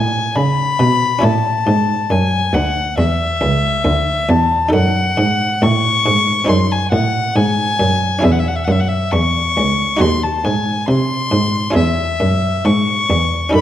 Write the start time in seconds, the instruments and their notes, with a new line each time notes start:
Already playing: harpsichord A2 B3 E4 D5, cello A2, violin G#5
0.36 cello C#3, harpsichord C#3, violin B5
0.79 cello B2, harpsichord B2
1.19 harpsichord C#4 E4 C#5
1.23 cello A2, harpsichord A2, violin A5
1.66 cello G#2, harpsichord G#2
2.10 harpsichord F#2, cello F#2, violin G#5
2.54 cello D2, harpsichord D2, violin F#5
2.98 cello E2, harpsichord E2, violin E5
3.41 harpsichord C#2, cello C#2
3.85 harpsichord D2, cello D2
4.29 harpsichord E2, cello E2, violin A5
4.69 harpsichord D#4 A4
4.73 cello F#2, harpsichord F#2, violin F#5
5.17 cello G#2, harpsichord G#2
5.62 harpsichord A2, cello A2, violin C#6
6.06 harpsichord G#2, cello G#2
6.45 harpsichord C4 D#4 G#4
6.49 harpsichord F#2, cello F#2, violin C6
6.72 violin G#5
6.92 harpsichord A2, cello A2, violin F#5
7.36 harpsichord G#2, cello G#2, violin G#5
7.80 harpsichord F#2, cello F#2
8.19 harpsichord C#4 E4 G#4
8.23 harpsichord E2, cello E2, violin E5
8.32 violin F#5
8.39 violin E5
8.48 violin F#5
8.56 violin E5
8.64 harpsichord F#2, cello F#2, violin F#5
8.72 violin E5
8.80 violin F#5
8.88 violin E5
9.12 harpsichord E2, cello E2, violin C#6
9.57 cello C#2, harpsichord C#2
9.97 cello D#2, harpsichord D#4 F#4 G#4
10.01 harpsichord D#2, violin C6
10.23 violin A5
10.44 cello G#2, harpsichord G#2, violin G#5
10.88 harpsichord C3, cello C3, violin C6
11.31 harpsichord G#2, cello G#2
11.71 harpsichord C#4 E4 G#4
11.75 harpsichord E2, cello E2, violin E5
12.20 harpsichord F#2, cello F#2
12.65 harpsichord G#2, cello G#2, violin C#6
13.10 harpsichord E2, cello E2
13.49 harpsichord C#4 D#4 A4
13.54 cello F#2, harpsichord F#2, violin B5